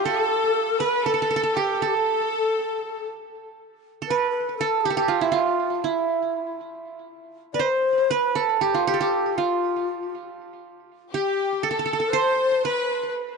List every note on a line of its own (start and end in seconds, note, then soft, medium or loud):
0.00 1.03 F4 medium
0.00 1.07 G4 medium
0.05 0.83 A4 medium
0.05 0.76 A4 medium
0.05 1.06 A4 medium
0.80 1.05 B4 medium
0.80 1.91 B4 medium
0.80 1.07 B4 medium
1.04 1.55 A4 medium
1.04 1.80 A4 medium
1.04 1.13 A4 medium
1.14 1.22 A4 medium
1.22 1.30 A4 medium
1.30 1.36 A4 medium
1.36 1.43 A4 medium
1.43 1.82 A4 medium
1.55 1.81 G4 medium
1.55 2.82 G4 medium
1.79 3.06 A4 medium
1.79 1.88 A4 medium
1.79 3.03 A4 medium
1.87 1.96 G4 medium
1.95 3.06 A4 medium
4.02 4.60 A4 medium
4.07 4.30 B4 medium
4.07 5.21 B4 medium
4.30 4.55 B4 medium
4.57 4.82 A4 medium
4.57 4.90 A4 medium
4.81 4.94 G4 medium
4.85 4.97 G4 medium
4.90 5.10 G4 medium
4.90 6.07 A4 medium
4.97 6.23 G4 medium
5.08 5.27 F4 medium
5.08 5.22 F4 medium
5.21 5.34 E4 medium
5.21 5.38 E4 medium
5.32 5.90 F4 medium
5.32 5.75 F4 medium
5.75 5.84 F4 soft
5.83 6.59 E4 medium
5.83 7.23 E4 medium
7.53 7.65 B4 medium
7.53 7.62 D5 medium
7.59 8.17 C5 medium
7.59 8.11 C5 medium
8.10 8.38 B4 medium
8.10 9.21 B4 medium
8.35 8.93 A4 medium
8.35 8.62 A4 medium
8.61 8.86 G4 medium
8.61 8.87 G4 medium
8.74 9.37 F4 medium
8.86 8.99 G4 medium
8.86 9.00 G4 medium
8.94 10.11 A4 medium
9.00 9.37 G4 medium
9.00 10.26 G4 medium
9.35 10.12 F4 medium
9.35 10.73 F4 medium
11.12 11.59 G4 medium
11.12 12.40 G4 medium
11.12 11.66 G4 medium
11.63 11.70 A4 medium
11.63 12.14 A4 medium
11.63 12.15 A4 medium
11.71 11.79 A4 medium
11.79 11.85 A4 medium
11.86 11.93 A4 medium
11.93 11.99 A4 medium
12.00 13.17 A4 medium
12.13 12.65 C5 medium
12.13 12.71 C5 loud
12.13 12.65 C5 medium
12.64 13.15 B4 medium
12.64 13.37 B4 medium
12.64 13.12 B4 medium